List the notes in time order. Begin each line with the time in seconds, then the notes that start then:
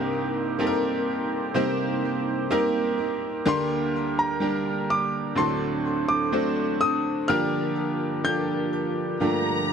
Already playing: C2 G2 C3 G3 A#3 C4 D#4 G4 A#4 C5 D#6
0.59 G3 A#3 C4 D#4 G4 A4 A#4
0.67 A#4
1.54 C3 G3 A#3 C4 D#4 G4 A#4 C5
2.50 G3 A#3 C4 D#4 G4 A#4
2.98 A#3 D#4 A#4
3.45 D2 D3 G3 A#3 D4 G4 A#4 C6
4.19 A#5
4.40 G3 A#3 D4 G4 A#4
4.90 D6
5.35 D2 A2 D3 F#3 A3 C4 D4 F#4 A4 C5 C6
6.09 D6
6.32 F#3 A3 C4 D4 F#4 A4 C5
6.80 C4 D4 A4 D#6
7.28 G2 A#2 D3 F3 A#3 D4 F4 G4 A#4 D5 F6
8.24 F3 A#3 D4 F4 G4 A4 G6
9.20 G2 D3 F3 A3 A#3 D4 F4 G4 A#5